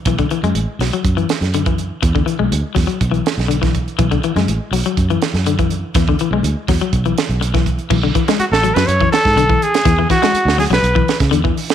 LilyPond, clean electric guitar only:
\new Staff \with { instrumentName = "Clean electric guitar" } { \clef bass \time 4/4 \key b \dorian \tempo 4 = 123 e16 d16 e16 gis8 r16 fis16 fis8 e8 r16 d16 e8 r16 | r16 d16 e16 gis8 r16 fis16 fis8 e8 r16 d16 e8 r16 | e16 d16 e16 gis8 r16 fis16 fis8 e8 r16 d16 e8 r16 | e16 d16 e16 gis8 r16 fis16 fis8 e8 r8 e8 r16 |
e16 d16 e16 gis8 r16 fis16 fis8 e8 r16 d16 e8 r16 | e16 e16 e16 gis8 r16 fis16 fis8 e8 r16 d16 e8 r16 | }